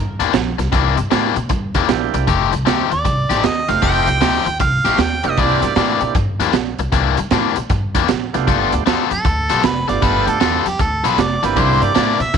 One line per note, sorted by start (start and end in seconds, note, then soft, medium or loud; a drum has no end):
0.00 0.18 G2 medium
0.20 0.33 E2 medium
0.20 0.32 C3 medium
0.20 0.33 E3 medium
0.20 0.33 A#3 medium
0.20 0.34 D4 medium
0.20 closed hi-hat medium
0.33 0.57 A#1 medium
0.33 muted overdriven electric guitar stroke soft
0.33 snare loud
0.33 closed hi-hat medium
0.58 0.71 C2 medium
0.58 muted overdriven electric guitar stroke soft
0.58 snare soft
0.58 closed hi-hat medium
0.72 0.95 C2 medium
0.72 0.97 C3 medium
0.72 0.96 E3 medium
0.72 0.96 A#3 medium
0.72 0.96 D4 medium
0.72 kick loud
0.72 closed hi-hat medium
0.97 1.10 G2 medium
0.97 muted overdriven electric guitar stroke soft
0.97 closed hi-hat medium
1.11 1.34 A2 medium
1.11 1.36 C3 medium
1.11 1.35 E3 medium
1.11 1.35 A#3 medium
1.11 1.35 D4 medium
1.11 snare medium
1.11 closed hi-hat medium
1.36 1.49 A#2 medium
1.36 muted overdriven electric guitar stroke soft
1.36 closed hi-hat medium
1.49 1.73 G2 medium
1.49 muted overdriven electric guitar stroke soft
1.49 kick loud
1.49 closed hi-hat medium
1.74 1.87 E2 medium
1.74 1.88 C3 medium
1.74 1.88 E3 medium
1.74 1.88 A#3 medium
1.74 1.88 D4 medium
1.74 kick medium
1.74 snare soft
1.74 closed hi-hat medium
1.88 2.12 A#1 medium
1.88 2.27 A#3 medium
1.88 2.28 C4 medium
1.88 2.28 D4 medium
1.88 2.28 E4 medium
1.88 2.28 G4 medium
1.88 muted overdriven electric guitar stroke soft
1.88 snare loud
1.88 closed hi-hat medium
2.14 2.27 C2 medium
2.14 muted overdriven electric guitar stroke soft
2.14 closed hi-hat medium
2.27 2.50 F1 medium
2.27 2.52 F3 medium
2.27 2.52 A3 medium
2.27 2.52 D#4 medium
2.27 2.52 G4 medium
2.27 kick medium
2.27 closed hi-hat medium
2.53 2.66 C2 medium
2.53 muted overdriven electric guitar stroke soft
2.53 closed hi-hat medium
2.65 2.89 D2 medium
2.65 2.91 F3 medium
2.65 2.91 A3 medium
2.65 2.90 D#4 medium
2.65 2.90 G4 medium
2.65 snare medium
2.65 closed hi-hat medium
2.91 3.04 D#2 medium
2.91 3.46 D5 medium
2.91 muted overdriven electric guitar stroke soft
2.91 closed hi-hat medium
3.05 3.28 C2 medium
3.05 muted overdriven electric guitar stroke soft
3.05 kick loud
3.05 closed hi-hat medium
3.30 3.43 A1 medium
3.30 3.43 F3 medium
3.30 3.43 A3 medium
3.30 3.43 D#4 medium
3.30 3.44 G4 medium
3.30 snare soft
3.30 closed hi-hat medium
3.43 3.66 D#2 medium
3.43 3.71 D#5 medium
3.43 muted overdriven electric guitar stroke soft
3.43 snare loud
3.43 closed hi-hat medium
3.68 3.81 F1 medium
3.68 4.19 A3 medium
3.68 4.19 C4 medium
3.68 4.19 D#4 medium
3.68 4.20 F4 medium
3.68 4.20 G4 medium
3.68 3.83 F5 medium
3.68 muted overdriven electric guitar stroke soft
3.68 snare soft
3.68 closed hi-hat medium
3.82 4.05 F1 medium
3.82 4.07 F3 medium
3.82 4.07 A3 medium
3.82 4.07 D#4 medium
3.82 4.07 G4 medium
3.82 4.56 G5 loud
3.82 kick loud
3.82 closed hi-hat medium
4.07 4.20 C2 medium
4.07 muted overdriven electric guitar stroke soft
4.07 closed hi-hat medium
4.21 4.44 D2 medium
4.21 4.46 F3 medium
4.21 4.46 A3 medium
4.21 4.45 D#4 medium
4.21 4.45 G4 medium
4.21 snare medium
4.21 closed hi-hat medium
4.45 4.58 D#2 medium
4.45 muted overdriven electric guitar stroke soft
4.45 closed hi-hat medium
4.60 4.83 C2 medium
4.60 5.02 F5 loud
4.60 muted overdriven electric guitar stroke soft
4.60 kick loud
4.60 closed hi-hat medium
4.84 4.97 A1 medium
4.84 4.99 F3 medium
4.84 4.99 A3 medium
4.84 4.99 D#4 medium
4.84 4.99 G4 medium
4.84 snare soft
4.84 closed hi-hat medium
4.98 5.21 D#2 medium
4.98 5.27 G5 medium
4.98 muted overdriven electric guitar stroke soft
4.98 snare loud
4.98 closed hi-hat medium
5.23 5.37 F1 medium
5.23 5.73 A#3 medium
5.23 5.73 C4 medium
5.23 5.74 D4 medium
5.23 5.74 E4 medium
5.23 5.74 G4 medium
5.23 5.42 D#5 medium
5.23 muted overdriven electric guitar stroke soft
5.23 closed hi-hat medium
5.37 5.60 C2 medium
5.37 5.63 C3 medium
5.37 5.62 E3 medium
5.37 5.61 A#3 medium
5.37 5.61 D4 medium
5.37 6.17 D5 medium
5.37 kick loud
5.37 closed hi-hat medium
5.62 5.75 G2 medium
5.62 muted overdriven electric guitar stroke soft
5.62 snare soft
5.62 closed hi-hat medium
5.76 5.99 A2 medium
5.76 6.01 C3 medium
5.76 6.00 E3 medium
5.76 6.00 A#3 medium
5.76 6.00 D4 medium
5.76 snare medium
5.76 closed hi-hat medium
6.01 6.14 A#2 medium
6.01 6.13 A#3 medium
6.01 6.14 C4 medium
6.01 6.14 D4 medium
6.01 6.14 E4 medium
6.01 6.15 G4 medium
6.01 muted overdriven electric guitar stroke soft
6.01 closed hi-hat medium
6.15 6.38 G2 medium
6.15 muted overdriven electric guitar stroke soft
6.15 kick loud
6.15 closed hi-hat medium
6.39 6.52 E2 medium
6.39 6.53 C3 medium
6.39 6.53 E3 medium
6.39 6.53 A#3 medium
6.39 6.54 D4 medium
6.39 snare soft
6.39 closed hi-hat medium
6.53 6.76 A#1 medium
6.53 muted overdriven electric guitar stroke soft
6.53 snare loud
6.53 closed hi-hat medium
6.78 6.91 C2 medium
6.78 muted overdriven electric guitar stroke soft
6.78 closed hi-hat medium
6.92 7.15 C2 medium
6.92 7.17 C3 medium
6.92 7.17 E3 medium
6.92 7.18 A#3 medium
6.92 7.17 D4 medium
6.92 kick medium
6.92 closed hi-hat medium
7.17 7.30 G2 medium
7.17 muted overdriven electric guitar stroke soft
7.17 closed hi-hat medium
7.31 7.54 A2 medium
7.31 7.56 C3 medium
7.31 7.56 E3 medium
7.31 7.56 A#3 medium
7.31 7.55 D4 medium
7.31 snare medium
7.31 closed hi-hat medium
7.56 7.69 A#2 medium
7.56 muted overdriven electric guitar stroke soft
7.56 closed hi-hat medium
7.69 7.92 G2 medium
7.69 muted overdriven electric guitar stroke soft
7.69 kick loud
7.69 closed hi-hat medium
7.95 8.07 E2 medium
7.95 8.08 C3 medium
7.95 8.08 E3 medium
7.95 8.08 A#3 medium
7.95 8.08 D4 medium
7.95 kick medium
7.95 snare soft
7.95 closed hi-hat medium
8.08 8.32 A#1 medium
8.08 muted overdriven electric guitar stroke soft
8.08 snare loud
8.08 closed hi-hat medium
8.33 8.47 C2 medium
8.33 8.83 A3 medium
8.33 8.84 B3 medium
8.33 8.84 D4 medium
8.33 8.84 F4 medium
8.33 8.84 G4 medium
8.33 muted overdriven electric guitar stroke soft
8.33 snare soft
8.33 closed hi-hat medium
8.47 8.70 G1 medium
8.47 8.72 G3 medium
8.47 8.72 B3 medium
8.47 8.72 F4 medium
8.47 8.72 A4 medium
8.47 kick loud
8.47 closed hi-hat medium
8.72 8.85 D2 medium
8.72 muted overdriven electric guitar stroke soft
8.72 closed hi-hat medium
8.86 9.09 E2 medium
8.86 9.11 G3 medium
8.86 9.11 B3 medium
8.86 9.11 F4 medium
8.86 9.10 A4 medium
8.86 snare loud
8.86 closed hi-hat medium
9.11 9.24 F2 medium
9.11 9.61 A4 medium
9.11 muted overdriven electric guitar stroke soft
9.11 closed hi-hat medium
9.25 9.47 D2 medium
9.25 muted overdriven electric guitar stroke soft
9.25 kick loud
9.25 closed hi-hat medium
9.49 9.63 B1 medium
9.49 9.62 G3 medium
9.49 9.63 B3 medium
9.49 9.63 F4 medium
9.49 9.63 A4 medium
9.49 snare soft
9.49 closed hi-hat medium
9.63 9.87 F1 medium
9.63 9.87 B4 medium
9.63 muted overdriven electric guitar stroke soft
9.63 snare loud
9.63 closed hi-hat medium
9.88 10.02 G1 medium
9.88 10.38 A3 medium
9.88 10.38 B3 medium
9.88 10.39 D4 medium
9.88 10.39 F4 medium
9.88 10.39 G4 medium
9.88 10.06 D5 medium
9.88 muted overdriven electric guitar stroke soft
9.88 snare soft
9.88 closed hi-hat medium
10.02 10.25 G1 medium
10.02 10.27 G3 medium
10.02 10.26 B3 medium
10.02 10.26 F4 medium
10.02 10.25 A4 medium
10.02 10.28 B4 medium
10.02 kick loud
10.02 closed hi-hat medium
10.27 10.40 D2 medium
10.27 10.64 A4 medium
10.27 muted overdriven electric guitar stroke soft
10.27 closed hi-hat medium
10.40 10.64 E2 medium
10.40 10.65 G3 medium
10.40 10.66 B3 medium
10.40 10.65 F4 medium
10.40 10.65 A4 medium
10.40 snare loud
10.40 closed hi-hat medium
10.66 10.78 F2 medium
10.66 10.80 G4 medium
10.66 muted overdriven electric guitar stroke soft
10.66 closed hi-hat medium
10.79 11.02 D2 medium
10.79 11.08 A4 medium
10.79 muted overdriven electric guitar stroke soft
10.79 kick medium
10.79 closed hi-hat medium
11.03 11.17 B1 medium
11.03 11.17 G3 medium
11.03 11.17 B3 medium
11.03 11.18 F4 medium
11.03 11.18 A4 medium
11.03 11.23 B4 medium
11.03 snare soft
11.03 closed hi-hat medium
11.18 11.41 F1 medium
11.18 11.48 D5 medium
11.18 muted overdriven electric guitar stroke soft
11.18 snare loud
11.18 closed hi-hat medium
11.43 11.56 G1 medium
11.43 11.93 A#3 medium
11.43 11.93 C4 medium
11.43 11.94 D4 medium
11.43 11.94 E4 medium
11.43 11.94 G4 medium
11.43 11.60 B4 medium
11.43 muted overdriven electric guitar stroke soft
11.43 snare soft
11.43 closed hi-hat medium
11.56 11.79 C2 medium
11.56 11.82 C3 medium
11.56 11.81 A#3 medium
11.56 11.80 D4 medium
11.56 11.80 E4 medium
11.56 11.85 C5 loud
11.56 kick loud
11.56 closed hi-hat medium
11.81 11.94 G2 medium
11.81 12.23 D5 loud
11.81 muted overdriven electric guitar stroke soft
11.81 closed hi-hat medium
11.95 12.18 A2 medium
11.95 12.20 C3 medium
11.95 12.19 A#3 medium
11.95 12.19 D4 medium
11.95 12.18 E4 medium
11.95 snare loud
11.95 closed hi-hat medium
12.20 12.33 A#2 medium
12.20 12.35 E5 medium
12.20 muted overdriven electric guitar stroke soft
12.20 closed hi-hat medium
12.34 12.38 G2 medium
12.34 muted overdriven electric guitar stroke soft
12.34 kick medium
12.34 snare soft
12.34 closed hi-hat medium